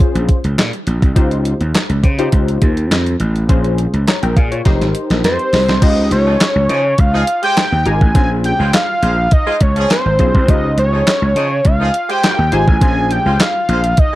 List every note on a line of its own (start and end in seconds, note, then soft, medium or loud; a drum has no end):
0.00 0.37 C#4 medium
0.00 0.37 F4 medium
0.00 0.38 G#4 medium
0.00 0.38 C5 medium
0.00 kick loud
0.15 0.26 A#1 medium
0.15 closed hi-hat medium
0.29 kick medium
0.29 closed hi-hat medium
0.44 0.56 C#2 medium
0.44 closed hi-hat medium
0.58 0.71 A#2 medium
0.58 snare loud
0.58 clap medium
0.58 closed hi-hat medium
0.73 closed hi-hat soft
0.87 1.00 A#1 medium
0.87 closed hi-hat medium
1.02 1.14 C2 medium
1.02 kick medium
1.02 closed hi-hat soft
1.16 1.53 C#2 loud
1.16 1.55 D#4 medium
1.16 1.55 F4 medium
1.16 1.56 G4 medium
1.16 1.56 C5 medium
1.16 kick loud
1.16 closed hi-hat loud
1.31 closed hi-hat soft
1.45 closed hi-hat medium
1.61 1.72 D#2 medium
1.61 closed hi-hat soft
1.75 snare loud
1.75 clap loud
1.75 closed hi-hat medium
1.90 2.01 C#2 medium
1.90 closed hi-hat medium
2.03 2.28 C#3 loud
2.03 2.10 G4 medium
2.03 2.11 C5 loud
2.03 kick medium
2.03 closed hi-hat medium
2.19 2.70 D#4 medium
2.19 2.70 F4 medium
2.19 2.70 G4 medium
2.19 2.71 C5 medium
2.19 closed hi-hat medium
2.32 2.57 C#2 medium
2.32 kick loud
2.32 closed hi-hat medium
2.48 closed hi-hat medium
2.62 2.86 D#2 medium
2.62 kick medium
2.62 closed hi-hat medium
2.77 closed hi-hat medium
2.91 3.15 F2 medium
2.91 snare loud
2.91 clap medium
2.91 closed hi-hat medium
3.06 closed hi-hat soft
3.20 3.44 A1 medium
3.20 closed hi-hat medium
3.36 closed hi-hat soft
3.49 3.86 A#1 loud
3.49 3.88 C#4 medium
3.49 3.89 F4 medium
3.49 3.89 G#4 medium
3.49 3.89 C5 medium
3.49 kick loud
3.49 closed hi-hat loud
3.64 closed hi-hat soft
3.78 closed hi-hat medium
3.94 4.05 C#2 medium
3.94 closed hi-hat soft
4.07 4.22 C#5 soft
4.07 4.22 A#5 medium
4.07 snare loud
4.07 clap loud
4.07 closed hi-hat medium
4.23 4.34 A#1 loud
4.23 4.36 A#4 medium
4.23 4.36 G5 medium
4.23 closed hi-hat medium
4.36 4.61 A#2 medium
4.36 4.52 G#4 medium
4.36 4.51 F5 medium
4.36 kick loud
4.36 closed hi-hat medium
4.52 4.80 F4 medium
4.52 4.80 C#5 medium
4.52 closed hi-hat medium
4.65 4.78 F1 loud
4.65 5.59 D#4 medium
4.65 5.59 G4 medium
4.65 5.59 A#4 medium
4.65 5.59 C5 loud
4.65 kick loud
4.65 snare medium
4.65 closed hi-hat medium
4.81 4.92 G#1 medium
4.81 snare soft
4.81 closed hi-hat medium
4.95 closed hi-hat medium
5.10 5.21 A#1 medium
5.10 snare medium
5.10 closed hi-hat medium
5.24 5.37 F2 loud
5.24 5.84 C5 medium
5.24 snare medium
5.24 closed hi-hat medium
5.39 closed hi-hat soft
5.53 5.66 C2 medium
5.53 snare medium
5.53 open hi-hat medium
5.68 5.80 C2 medium
5.68 snare medium
5.68 closed hi-hat soft
5.82 6.06 C#2 loud
5.82 6.34 D#4 medium
5.82 6.34 F4 medium
5.82 6.34 G4 medium
5.82 6.35 C5 medium
5.82 6.12 D#5 medium
5.82 kick loud
5.82 closed hi-hat loud
5.82 crash loud
6.11 6.35 C#2 medium
6.11 7.01 C#5 medium
6.11 closed hi-hat medium
6.27 6.38 F3 medium
6.27 6.38 D#4 medium
6.27 6.38 G#4 medium
6.40 snare loud
6.40 clap loud
6.40 closed hi-hat loud
6.56 6.67 C#2 loud
6.69 6.93 C#3 loud
6.69 6.83 F3 medium
6.69 6.83 D#4 medium
6.69 6.83 G#4 medium
6.69 closed hi-hat medium
6.98 7.23 C#2 medium
6.98 7.44 F5 loud
6.98 kick loud
6.98 closed hi-hat medium
7.14 7.23 F3 medium
7.14 7.23 D#4 loud
7.14 7.23 G#4 loud
7.27 closed hi-hat medium
7.43 7.62 G#3 loud
7.43 7.62 G4 medium
7.43 7.62 C5 loud
7.43 7.89 G5 loud
7.43 closed hi-hat medium
7.57 snare loud
7.57 clap medium
7.57 closed hi-hat loud
7.72 7.84 D#2 medium
7.86 7.99 G#1 medium
7.86 8.00 D#4 medium
7.86 8.00 F4 medium
7.86 8.00 G4 medium
7.86 8.00 A#4 medium
7.86 8.16 G#5 loud
7.86 closed hi-hat medium
8.01 8.13 A1 medium
8.01 kick medium
8.15 8.52 A#1 loud
8.15 8.67 C#4 medium
8.15 8.67 F4 medium
8.15 8.67 G#4 medium
8.15 8.68 C5 medium
8.15 8.29 G#5 medium
8.15 kick loud
8.15 closed hi-hat loud
8.44 8.72 G5 medium
8.44 closed hi-hat medium
8.60 8.71 C#2 medium
8.60 8.71 G#3 medium
8.60 8.71 F4 medium
8.60 8.71 C5 medium
8.73 9.34 F5 loud
8.73 snare loud
8.73 clap loud
8.73 closed hi-hat loud
9.02 9.27 A#1 medium
9.02 9.16 G#3 medium
9.02 9.16 F4 medium
9.02 9.16 C5 loud
9.02 closed hi-hat medium
9.31 9.64 D#5 loud
9.31 kick loud
9.31 closed hi-hat medium
9.47 9.56 G#3 loud
9.47 9.56 F4 loud
9.47 9.56 C5 loud
9.61 9.85 C#2 loud
9.61 9.91 C#5 medium
9.61 kick medium
9.61 closed hi-hat medium
9.76 9.95 F3 loud
9.76 9.95 C#4 loud
9.76 9.95 G#4 loud
9.76 closed hi-hat medium
9.90 10.51 C5 loud
9.90 snare loud
9.90 clap medium
9.90 closed hi-hat medium
10.05 10.17 G#1 medium
10.19 10.32 B1 medium
10.19 10.33 C#4 medium
10.19 10.33 F4 medium
10.19 10.33 G#4 medium
10.19 10.33 C5 medium
10.19 kick medium
10.19 closed hi-hat medium
10.35 10.46 C2 medium
10.35 kick medium
10.48 10.72 C#2 loud
10.48 11.00 D#4 medium
10.48 11.00 F4 medium
10.48 11.01 G4 medium
10.48 11.01 C5 medium
10.48 10.78 D#5 loud
10.48 kick loud
10.48 closed hi-hat loud
10.77 11.01 C#2 loud
10.77 11.68 C#5 medium
10.77 closed hi-hat medium
10.93 11.05 F3 medium
10.93 11.04 D#4 medium
10.93 11.04 G#4 medium
11.07 snare loud
11.07 clap loud
11.07 closed hi-hat loud
11.22 11.33 C#2 loud
11.36 11.60 C#3 medium
11.36 11.49 F3 medium
11.36 11.49 D#4 medium
11.36 11.49 G#4 loud
11.36 closed hi-hat medium
11.65 11.89 C#2 medium
11.65 12.10 F5 loud
11.65 kick loud
11.65 closed hi-hat medium
11.80 11.89 F3 medium
11.80 11.89 D#4 medium
11.80 11.89 G#4 loud
11.94 closed hi-hat medium
12.09 12.46 G#3 loud
12.09 12.46 G4 loud
12.09 12.46 C5 loud
12.09 12.55 G5 loud
12.09 closed hi-hat medium
12.23 snare loud
12.23 clap medium
12.23 closed hi-hat medium
12.39 12.50 D#2 medium
12.52 12.65 G#1 medium
12.52 12.66 D#4 medium
12.52 12.66 F4 medium
12.52 12.66 G4 medium
12.52 12.66 C5 loud
12.52 12.82 G#5 loud
12.52 closed hi-hat medium
12.68 12.79 A1 medium
12.68 kick medium
12.81 13.18 A#1 loud
12.81 13.33 C#4 medium
12.81 13.33 F4 medium
12.81 13.34 G#4 medium
12.81 13.34 C5 medium
12.81 13.13 G#5 loud
12.81 kick loud
12.81 closed hi-hat loud
13.11 13.42 G5 medium
13.11 closed hi-hat medium
13.26 13.37 C#2 medium
13.26 13.38 G#3 medium
13.26 13.38 F4 medium
13.26 13.38 C5 medium
13.40 14.01 F5 loud
13.40 snare loud
13.40 clap loud
13.40 closed hi-hat loud
13.69 13.93 A#1 loud
13.69 13.82 G#3 medium
13.69 13.82 F4 medium
13.69 13.82 C5 loud
13.69 closed hi-hat medium
13.84 closed hi-hat medium
13.97 14.15 D#5 loud
13.97 kick loud
13.97 closed hi-hat medium